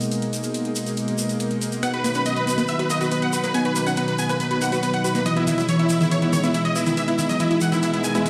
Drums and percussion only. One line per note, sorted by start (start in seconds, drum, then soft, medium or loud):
0.01 closed hi-hat soft
0.01 shaker soft
0.11 closed hi-hat medium
0.11 shaker soft
0.22 closed hi-hat soft
0.33 closed hi-hat medium
0.33 shaker medium
0.43 closed hi-hat soft
0.43 shaker medium
0.54 closed hi-hat medium
0.54 shaker soft
0.65 closed hi-hat soft
0.76 closed hi-hat medium
0.76 shaker medium
0.86 closed hi-hat soft
0.86 shaker medium
0.97 closed hi-hat medium
0.97 shaker soft
1.08 closed hi-hat soft
1.18 closed hi-hat medium
1.18 shaker medium
1.29 closed hi-hat soft
1.29 shaker medium
1.40 closed hi-hat medium
1.40 shaker soft
1.51 closed hi-hat soft
1.61 closed hi-hat medium
1.61 shaker medium
1.72 closed hi-hat soft
1.72 shaker soft
1.83 closed hi-hat medium
1.83 shaker soft
1.94 closed hi-hat soft
2.04 closed hi-hat medium
2.04 shaker medium
2.14 closed hi-hat soft
2.14 shaker soft
2.26 closed hi-hat medium
2.26 shaker soft
2.36 closed hi-hat soft
2.47 closed hi-hat medium
2.47 shaker medium
2.58 closed hi-hat soft
2.58 shaker soft
2.67 closed hi-hat medium
2.67 shaker soft
2.79 closed hi-hat soft
2.90 closed hi-hat medium
2.90 shaker medium
3.01 closed hi-hat soft
3.01 shaker soft
3.11 closed hi-hat medium
3.11 shaker soft
3.22 closed hi-hat soft
3.33 closed hi-hat medium
3.33 shaker medium
3.44 closed hi-hat soft
3.44 shaker soft
3.54 closed hi-hat medium
3.54 shaker soft
3.65 closed hi-hat soft
3.76 closed hi-hat medium
3.76 shaker medium
3.86 closed hi-hat soft
3.86 shaker soft
3.96 closed hi-hat medium
3.96 shaker soft
4.08 closed hi-hat medium
4.18 closed hi-hat medium
4.18 shaker medium
4.29 closed hi-hat soft
4.29 shaker soft
4.40 closed hi-hat medium
4.40 shaker soft
4.51 closed hi-hat soft
4.61 closed hi-hat medium
4.61 shaker medium
4.72 closed hi-hat soft
4.72 shaker soft
4.83 closed hi-hat medium
4.83 shaker soft
4.94 closed hi-hat soft
5.04 closed hi-hat medium
5.04 shaker medium
5.15 closed hi-hat soft
5.15 shaker soft
5.26 closed hi-hat medium
5.26 shaker soft
5.36 closed hi-hat soft
5.47 closed hi-hat medium
5.47 shaker medium
5.58 closed hi-hat medium
5.58 shaker soft
5.68 closed hi-hat medium
5.68 shaker soft
5.79 closed hi-hat medium
5.89 closed hi-hat medium
5.89 shaker medium
6.01 closed hi-hat soft
6.01 shaker soft
6.11 closed hi-hat medium
6.11 shaker soft
6.22 closed hi-hat soft
6.33 closed hi-hat medium
6.33 shaker medium
6.44 closed hi-hat soft
6.44 shaker soft
6.54 closed hi-hat loud
6.54 shaker soft
6.65 closed hi-hat soft
6.76 closed hi-hat medium
6.76 shaker medium
6.86 closed hi-hat soft
6.86 shaker soft
6.97 closed hi-hat medium
6.97 shaker soft
7.08 closed hi-hat soft
7.19 closed hi-hat medium
7.19 shaker medium
7.29 closed hi-hat medium
7.29 shaker soft
7.39 closed hi-hat medium
7.39 shaker soft
7.51 closed hi-hat medium
7.61 closed hi-hat medium
7.61 shaker medium
7.72 closed hi-hat medium
7.72 shaker soft
7.83 closed hi-hat medium
7.83 shaker soft
7.94 closed hi-hat medium
8.04 closed hi-hat medium
8.04 shaker medium
8.15 closed hi-hat soft
8.15 shaker soft
8.26 closed hi-hat medium
8.26 shaker soft